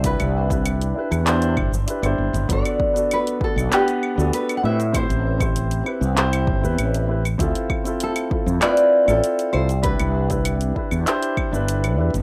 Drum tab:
HH |xx-xxx-xxx--xx-x|xx-xxx--xx--xx-x|xx-xxx--xx--xx-x|xx-xxx--xx--xx-x|
SH |xx-xxx-xxx-xxx-x|xx-xxx-xxx-xxx-x|xx-xxx-xxx-xxx-x|xx-xxx-xxx-xxx-x|
CL |-x--x--x--x--x--|-x--x--x--x--x--|x--x--x--x--x--x|--x--x--x--x--x-|
CP |--------x-------|--------x-------|--------x-------|--------x-------|
BD |o--o------o-----|o-o---o---------|o--o------o-----|o-o---o---------|

HH |xx-xxx--xx--xx-x|
SH |xx-xxx-xxx-xxx-x|
CL |-x--x--x--x--x--|
CP |--------x-------|
BD |o--o--o---o-----|